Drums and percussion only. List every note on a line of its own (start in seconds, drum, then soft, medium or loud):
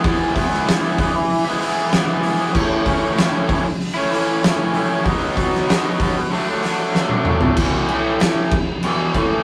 0.04 kick loud
0.04 open hi-hat medium
0.36 kick medium
0.36 open hi-hat medium
0.53 snare soft
0.67 snare loud
0.67 open hi-hat medium
0.98 kick loud
0.98 open hi-hat medium
1.30 open hi-hat medium
1.61 open hi-hat medium
1.91 snare loud
1.91 open hi-hat medium
2.23 open hi-hat medium
2.55 kick loud
2.55 crash loud
2.85 kick medium
2.85 open hi-hat medium
3.17 snare loud
3.17 open hi-hat medium
3.49 kick loud
3.49 open hi-hat medium
3.80 open hi-hat medium
4.12 open hi-hat medium
4.43 snare loud
4.43 open hi-hat medium
4.74 open hi-hat medium
5.06 kick loud
5.06 open hi-hat medium
5.37 kick medium
5.37 open hi-hat medium
5.55 snare soft
5.69 snare loud
5.69 open hi-hat medium
6.00 kick loud
6.00 open hi-hat medium
6.32 open hi-hat medium
6.63 snare soft
6.63 open hi-hat medium
6.95 snare medium
7.09 high tom medium
7.25 mid tom loud
7.41 floor tom loud
7.57 kick loud
7.57 crash loud
7.57 crash medium
7.88 crash medium
8.20 snare loud
8.20 crash medium
8.52 kick loud
8.52 crash medium
8.83 crash medium
9.14 kick medium
9.14 crash medium